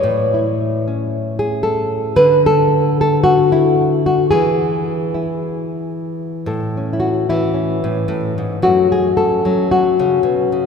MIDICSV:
0, 0, Header, 1, 2, 480
1, 0, Start_track
1, 0, Key_signature, 3, "major"
1, 0, Tempo, 536673
1, 19, Time_signature, 4, 2, 24, 8
1, 9534, End_track
2, 0, Start_track
2, 0, Title_t, "Nylon-string guitar"
2, 0, Program_c, 0, 24
2, 0, Note_on_c, 0, 73, 91
2, 30, Note_on_c, 0, 45, 69
2, 303, Note_on_c, 0, 64, 46
2, 783, Note_on_c, 0, 61, 43
2, 982, Note_off_c, 0, 73, 0
2, 1241, Note_off_c, 0, 64, 0
2, 1244, Note_on_c, 0, 68, 92
2, 1459, Note_on_c, 0, 69, 100
2, 1920, Note_off_c, 0, 45, 0
2, 1924, Note_off_c, 0, 61, 0
2, 1933, Note_off_c, 0, 69, 0
2, 1934, Note_on_c, 0, 50, 75
2, 1936, Note_on_c, 0, 71, 113
2, 1940, Note_off_c, 0, 68, 0
2, 2200, Note_off_c, 0, 71, 0
2, 2203, Note_on_c, 0, 69, 108
2, 2681, Note_off_c, 0, 69, 0
2, 2692, Note_on_c, 0, 69, 100
2, 2890, Note_off_c, 0, 69, 0
2, 2894, Note_on_c, 0, 66, 101
2, 3150, Note_on_c, 0, 64, 83
2, 3622, Note_off_c, 0, 66, 0
2, 3633, Note_on_c, 0, 66, 89
2, 3831, Note_off_c, 0, 50, 0
2, 3848, Note_off_c, 0, 66, 0
2, 3851, Note_on_c, 0, 68, 92
2, 3852, Note_off_c, 0, 64, 0
2, 3862, Note_on_c, 0, 52, 72
2, 4600, Note_on_c, 0, 64, 44
2, 5752, Note_off_c, 0, 64, 0
2, 5775, Note_off_c, 0, 68, 0
2, 5781, Note_on_c, 0, 45, 69
2, 5788, Note_on_c, 0, 69, 42
2, 6057, Note_on_c, 0, 61, 47
2, 6199, Note_on_c, 0, 64, 64
2, 6254, Note_off_c, 0, 69, 0
2, 6258, Note_on_c, 0, 66, 76
2, 6513, Note_off_c, 0, 64, 0
2, 6518, Note_off_c, 0, 52, 0
2, 6524, Note_on_c, 0, 64, 80
2, 6528, Note_on_c, 0, 52, 61
2, 6742, Note_off_c, 0, 61, 0
2, 6745, Note_on_c, 0, 61, 47
2, 7000, Note_off_c, 0, 45, 0
2, 7003, Note_off_c, 0, 61, 0
2, 7003, Note_off_c, 0, 66, 0
2, 7010, Note_on_c, 0, 45, 59
2, 7016, Note_on_c, 0, 61, 44
2, 7217, Note_off_c, 0, 45, 0
2, 7228, Note_on_c, 0, 45, 64
2, 7488, Note_off_c, 0, 45, 0
2, 7494, Note_on_c, 0, 44, 60
2, 7679, Note_off_c, 0, 61, 0
2, 7700, Note_off_c, 0, 64, 0
2, 7702, Note_off_c, 0, 52, 0
2, 7704, Note_off_c, 0, 44, 0
2, 7713, Note_on_c, 0, 42, 67
2, 7719, Note_on_c, 0, 66, 99
2, 7724, Note_on_c, 0, 54, 45
2, 7728, Note_on_c, 0, 57, 47
2, 7732, Note_on_c, 0, 61, 48
2, 7972, Note_off_c, 0, 66, 0
2, 7977, Note_on_c, 0, 68, 97
2, 8186, Note_off_c, 0, 68, 0
2, 8202, Note_on_c, 0, 69, 97
2, 8450, Note_off_c, 0, 54, 0
2, 8454, Note_off_c, 0, 61, 0
2, 8454, Note_on_c, 0, 54, 54
2, 8464, Note_on_c, 0, 61, 45
2, 8671, Note_off_c, 0, 69, 0
2, 8688, Note_on_c, 0, 66, 89
2, 8934, Note_off_c, 0, 61, 0
2, 8939, Note_on_c, 0, 49, 66
2, 8943, Note_on_c, 0, 61, 47
2, 9147, Note_off_c, 0, 49, 0
2, 9151, Note_on_c, 0, 47, 65
2, 9409, Note_off_c, 0, 47, 0
2, 9412, Note_on_c, 0, 49, 59
2, 9534, Note_off_c, 0, 42, 0
2, 9534, Note_off_c, 0, 49, 0
2, 9534, Note_off_c, 0, 54, 0
2, 9534, Note_off_c, 0, 57, 0
2, 9534, Note_off_c, 0, 61, 0
2, 9534, Note_off_c, 0, 66, 0
2, 9534, End_track
0, 0, End_of_file